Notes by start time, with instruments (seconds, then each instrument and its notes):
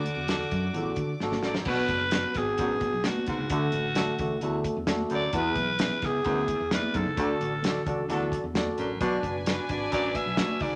Already playing: tine electric piano D3 D4 F#4 A4, alto saxophone F#4, violin section D5 D6
0.04 closed hi-hat, muted conga
0.16 fingered electric bass E2
0.27 tine electric piano D4 F#4 A4, snare, closed hi-hat, high conga
0.41 snare
0.51 fingered electric bass F#2, kick, closed hi-hat
0.73 fingered electric bass A1, baritone saxophone E2, tine electric piano D4 F4 A4, closed hi-hat, low conga
0.82 tine electric piano F#4
0.96 fingered electric bass D3, kick, closed hi-hat, muted conga
1.20 fingered electric bass G#1, tine electric piano D4 F#4 A4, snare, high conga
1.32 snare, high conga
1.43 fingered electric bass A1, baritone saxophone F#2, alto saxophone D5, snare, high conga
1.55 snare
1.65 fingered electric bass B1, baritone saxophone B2, tine electric piano B2 B3 D4 F#4 B4, alto saxophone B4, kick, crash, muted conga
1.88 fingered electric bass F#1, kick, closed hi-hat, muted conga
2.11 tine electric piano D4 B4, snare, closed hi-hat, high conga
2.15 tine electric piano B3 F#4
2.35 fingered electric bass G#1, tine electric piano B3 D4 F#4 B4, alto saxophone G#4, kick, snare, closed hi-hat
2.58 fingered electric bass A1, baritone saxophone F#2, tine electric piano B3 D4 F#4 B4, kick, closed hi-hat, muted conga
2.81 kick, closed hi-hat, muted conga
2.93 fingered electric bass B1
3.04 tine electric piano B3 D4 F#4 B4, alto saxophone F#4, snare, closed hi-hat, high conga
3.15 high conga
3.26 fingered electric bass C#2, baritone saxophone G#2, alto saxophone F#4, kick, closed hi-hat
3.38 fingered electric bass C#2
3.49 fingered electric bass D2, baritone saxophone D2, tine electric piano D3 A3 D4 F#4 A4, kick, closed hi-hat, muted conga
3.72 fingered electric bass A1, closed hi-hat, muted conga
3.94 tine electric piano A3 D4 F#4 A4, snare, closed hi-hat, high conga
4.18 fingered electric bass C#2, tine electric piano A3 D4 F#4 A4, kick, closed hi-hat, low conga
4.41 fingered electric bass D2, baritone saxophone E2, tine electric piano A3 D4 F#4 A4, closed hi-hat, muted conga
4.64 kick, closed hi-hat, muted conga
4.77 fingered electric bass E2
4.86 tine electric piano A3 D4 F#4 A4, snare, closed hi-hat, high conga
4.98 high conga
5.10 fingered electric bass D2, baritone saxophone F#2, closed hi-hat
5.15 alto saxophone D5
5.33 fingered electric bass E2, baritone saxophone E2, tine electric piano E3 B3 E4 F#4 B4, kick, closed hi-hat, muted conga
5.38 tine electric piano G#4, alto saxophone B4
5.55 fingered electric bass B1, kick, closed hi-hat, muted conga
5.79 tine electric piano B3 E4 G#4 B4, snare, closed hi-hat, high conga
5.90 snare
6.02 fingered electric bass C#2, tine electric piano B3 E4 G#4 B4, alto saxophone G#4, kick, snare, closed hi-hat
6.25 fingered electric bass D2, baritone saxophone F#2, tine electric piano B3 E4 G#4 B4, kick, closed hi-hat, muted conga
6.48 kick, closed hi-hat, muted conga
6.60 fingered electric bass E2
6.71 tine electric piano B3 E4 G#4 D5, alto saxophone B4, snare, closed hi-hat, high conga
6.83 high conga
6.93 fingered electric bass F#2, baritone saxophone G#2, alto saxophone A4, kick, closed hi-hat
7.06 fingered electric bass C#2
7.17 baritone saxophone D2, fingered electric bass D2, tine electric piano D3 D4 F#4 A4 D5, kick, closed hi-hat, muted conga
7.40 fingered electric bass A1, closed hi-hat, muted conga
7.62 tine electric piano D4 F#4 A4 D5, snare, closed hi-hat, high conga
7.76 snare
7.85 fingered electric bass C#2, tine electric piano D4 F#4 A4 D5, kick, closed hi-hat, low conga
8.08 fingered electric bass D2, baritone saxophone E2, horn section F#3 A3 D4 A4, tine electric piano D4 F#4 A4 D5, closed hi-hat, muted conga, low conga
8.31 kick, closed hi-hat, muted conga
8.44 fingered electric bass E2
8.54 tine electric piano D4 F#4 A4 D5, snare, closed hi-hat, high conga
8.65 high conga
8.78 fingered electric bass A1, baritone saxophone F#2, closed hi-hat
8.99 fingered electric bass B1, baritone saxophone B2, tine electric piano B2 D4 F#4 B4 D5, violin section D4 B4 G#5, kick, closed hi-hat, muted conga
9.23 fingered electric bass F#1, kick, closed hi-hat, muted conga
9.46 tine electric piano D4 F#4 B4 D5, alto saxophone B4, snare, closed hi-hat, high conga
9.69 fingered electric bass G#1, tine electric piano D4 F#4 B4 D5, alto saxophone D5, kick, closed hi-hat
9.92 fingered electric bass A1, baritone saxophone F#2, tine electric piano D4 F#4 B4 D5, alto saxophone D5, kick, closed hi-hat, muted conga
10.14 alto saxophone E5, kick, closed hi-hat, muted conga
10.26 fingered electric bass B1
10.37 tine electric piano D4 F#4 B4 D5, snare, closed hi-hat, high conga
10.48 high conga
10.60 fingered electric bass C#2, baritone saxophone G#2, alto saxophone D5, kick, open hi-hat
10.72 fingered electric bass C#2